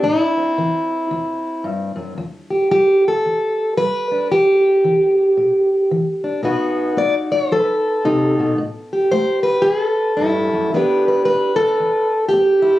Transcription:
Already playing: D4
0.03 A2 E4
0.37 C4
0.58 E3
1.11 E2
1.64 G2
1.96 F#2
2.18 E2
2.50 G4
2.71 G3 G4
3.08 A4
3.26 E2
3.77 G3 B4
4.12 D4
4.31 E2 G4
4.84 E3
5.37 B2
5.91 E3
6.24 D4
6.43 B2 B3 D#4 F#4 B4
6.97 B3 D5
7.32 C#5
7.51 F#3 A4 C5
7.63 B4
8.05 C3 D#4
8.39 B2
8.58 A2
8.93 G4
9.12 A3 C5
9.43 B4
9.62 E2 G#4
9.82 A4
10.17 G2 E4
10.53 F#2
10.73 E2 B3 D4 G4 B4
11.08 B4
11.25 B3 B4
11.56 A4
11.80 E2
12.29 G4
12.33 B3
12.62 E4

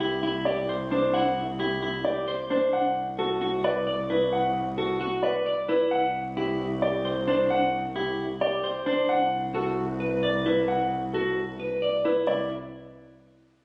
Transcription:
Already playing: C2
0.00 E4 G4
0.23 E4
0.45 G4 D5
0.69 C5
0.91 D4 C5
1.13 E4 F#5
1.59 E4 G4
1.83 E4
2.05 G4 D5
2.28 C5
2.50 D4 C5
2.73 C2 F#5
3.18 F#4 A4
3.42 F#4
3.64 B4 D5
3.87 D5
4.10 E4 B4
4.33 F#5
4.77 F#4 A4
5.01 F#4
5.23 B4 D5
5.46 D5
5.68 E4 B4
5.91 C2 F#5
6.37 E4 G4
6.82 G4 D5
7.05 C5
7.27 D4 C5
7.50 F#5
7.96 E4 G4
8.41 G4 D5
8.64 C5
8.86 D4 C5
9.09 C2 F#5
9.54 F#4 A4
10.00 B4
10.23 D5
10.46 E4 B4
10.68 F#5
11.13 F#4 A4
11.60 B4
11.82 D5
12.05 E4 B4
12.27 C2 E4 D5

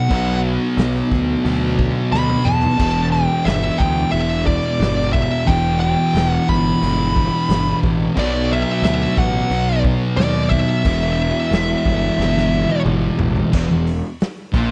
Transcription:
Already playing: B3 F#5
0.09 B1 B2 F#3 B3, kick, open hi-hat
0.77 B1, snare, open hi-hat
1.12 D2, kick, snare
1.44 D2 B2 F#3 B3, open hi-hat
1.79 kick
2.12 D2 B5, snare
2.29 high tom
2.45 E2 A5, mid tom
2.63 floor tom
2.78 E1 E2 B2 E3, kick, crash
3.12 G5
3.45 G1 E5, snare, open hi-hat
3.78 D2 G5, kick
4.11 E1 E2 B2 E5, open hi-hat
4.15 E3
4.47 D5, kick
4.79 G1, snare, open hi-hat
5.13 E5, kick
5.47 E1 E2 B2 E3 G5, kick, open hi-hat
5.80 G5
6.14 E1, snare, open hi-hat
6.29 F#5
6.49 G1 B5, kick
6.82 G1 E2 B2 E3, open hi-hat
7.16 kick
7.49 G1, snare, open hi-hat
7.83 A1, kick
8.16 B1 B2 F#3 B3 D5, kick, crash
8.53 E5
8.82 D2 E5, snare, open hi-hat
9.17 A1 F#5, kick
9.50 B1 B2 F#3 B3, open hi-hat
9.84 kick
10.17 D#2 D5, snare, open hi-hat
10.50 E5, kick
10.84 E1 E2 B2 E3, kick, open hi-hat
11.51 E1, snare, open hi-hat
11.85 G1, kick
12.18 G1 E2 B2 E3, snare
12.37 snare
12.69 high tom
12.85 G1, mid tom
13.19 A1, floor tom
13.36 floor tom
13.53 E1 E2, kick, crash
13.69 E1 E2
13.87 open hi-hat
14.20 snare, open hi-hat
14.54 A#1 A#2, kick, open hi-hat

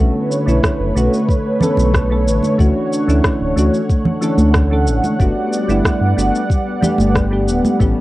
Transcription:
Already playing: B1 D3 A3 B3 C#5
0.00 D3 A3 C#4 F#4 B4
0.32 shaker
0.46 B1 D3 A3 B3 C#4 E4, shaker
0.63 kick, cross-stick, shaker
0.79 F#1
0.95 B1 D3 A3 B3 C#4 F#4, shaker
1.13 shaker
1.28 kick, shaker
1.60 D3 A3 B3 C#4 A4, low conga, shaker
1.77 B1, high conga, shaker
1.94 kick, cross-stick, shaker
2.10 D3 A3 B3 C#4 A4
2.26 A1, shaker
2.42 high conga, shaker
2.58 D2 E3 A3 C#4 D4 F#4 F#5, kick, shaker
2.93 shaker
3.07 D2 E3 A3 C#4 D4 E4, shaker
3.24 kick, cross-stick, shaker
3.41 D1
3.56 D2 E3 A3 C#4 D4 F#4, shaker
3.74 shaker
3.89 kick, shaker
4.05 low conga
4.21 E3 A3 C#4 D4 A4, shaker
4.38 D2, high conga, shaker
4.54 kick, cross-stick, shaker
4.70 E3 A3 C#4 D4 A4
4.87 A1, shaker
5.04 high conga, shaker
5.19 G1 G3 A3 B3 D4 F#4 D5, kick, shaker
5.53 shaker
5.68 G1 G3 A3 B3 D4 E4, shaker
5.85 kick, cross-stick, shaker
6.01 G2
6.17 G1 G3 A3 B3 D4 F#4, shaker
6.35 shaker
6.50 kick, shaker
6.81 G3 A3 B3 D4 G4, low conga, shaker
6.98 G1, high conga, shaker
7.15 kick, cross-stick, shaker
7.31 G3 A3 B3 D4 G4
7.48 D1, shaker
7.65 high conga, shaker
7.80 A1 E3 G3 A3 B3 C#4 G4 C#5 A5, kick, shaker

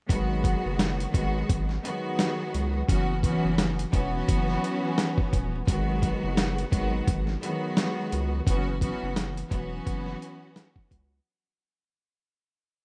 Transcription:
0.09 G#1 D#3 F#3 G#3 B3 F#4, kick, closed hi-hat
0.44 kick, closed hi-hat
0.65 F#1
0.79 snare, closed hi-hat
1.00 closed hi-hat
1.12 G#1 D#3 F#3 G#3 B3 F#4, kick, closed hi-hat
1.49 G#1, kick, closed hi-hat
1.69 snare
1.83 D#3 F#3 G#3 B3 F#4, closed hi-hat
2.19 snare, closed hi-hat
2.54 C#2, closed hi-hat
2.87 F#1 E3 F#3 B3 C#4 F#4, kick, closed hi-hat
3.23 E3 F#3 B3 C#4 F#4, kick, closed hi-hat
3.44 F#1
3.58 snare, closed hi-hat
3.79 closed hi-hat
3.92 E1 E3 F#3 B3 C#4 F#4, kick, closed hi-hat
4.28 F#1, kick, closed hi-hat
4.48 snare
4.64 closed hi-hat
4.98 snare, closed hi-hat
5.18 kick
5.33 D#1, kick, closed hi-hat
5.67 G#1 D#3 F#3 G#3 B3 F#4, kick, closed hi-hat
6.02 kick, closed hi-hat
6.23 F#1
6.37 snare, closed hi-hat
6.58 closed hi-hat
6.70 G#1 D#3 F#3 G#3 B3 F#4, kick, closed hi-hat
7.07 G#1, kick, closed hi-hat
7.27 snare
7.41 D#3 F#3 G#3 B3 F#4, closed hi-hat
7.77 snare, closed hi-hat
8.12 C#2, closed hi-hat
8.46 F#1 E3 F#3 B3 C#4 F#4, kick, closed hi-hat
8.81 E3 F#3 B3 C#4 F#4, kick, closed hi-hat
9.03 F#1
9.16 snare, closed hi-hat
9.38 closed hi-hat
9.49 E1 E3 F#3 B3 C#4 F#4, kick, closed hi-hat
9.87 F#1, kick, closed hi-hat
10.06 snare
10.22 closed hi-hat
10.56 snare, closed hi-hat
10.76 kick
10.91 C#2, kick, closed hi-hat

